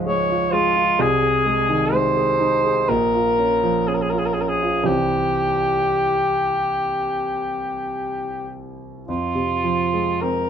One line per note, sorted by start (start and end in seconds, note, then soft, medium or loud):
0.00 1.02 G#2 medium
0.00 0.20 F3 medium
0.00 0.06 G#3 medium
0.00 0.30 F4 medium
0.06 0.44 G#3 medium
0.06 0.54 C#5 loud
0.30 0.68 F4 medium
0.52 0.91 G#3 medium
0.52 1.03 F4 loud
0.76 1.00 F4 medium
0.99 2.84 C2 medium
0.99 1.95 G#4 medium
1.23 1.60 G#4 medium
1.46 1.83 G#3 medium
1.69 2.07 D#3 soft
1.92 2.30 G#3 medium
1.92 2.90 C5 medium
2.16 2.55 G#4 medium
2.40 2.79 D#4 soft
2.64 2.89 G#4 medium
2.89 4.84 A#1 medium
2.89 3.89 A#4 medium
3.14 3.53 F4 medium
3.39 3.78 C#4 soft
3.63 4.03 F3 medium
3.88 4.27 C#4 medium
3.88 3.96 G#4 medium
3.94 4.03 A#4 medium
4.02 4.12 G#4 medium
4.10 4.52 F4 soft
4.10 4.20 A#4 medium
4.19 4.27 G#4 medium
4.26 4.35 A#4 medium
4.34 4.78 C#4 soft
4.34 4.43 G#4 medium
4.41 4.50 A#4 medium
4.49 4.85 G#4 medium
4.63 4.88 F4 medium
4.84 9.02 C2 medium
4.84 9.02 E3 soft
4.84 9.04 C4 soft
4.84 8.51 G4 medium
9.08 10.50 F2 soft
9.08 10.23 F4 medium
9.35 9.82 C3 soft
9.64 10.11 F3 soft
9.94 10.39 G#3 soft
10.22 10.50 C4 soft
10.22 10.50 A#4 medium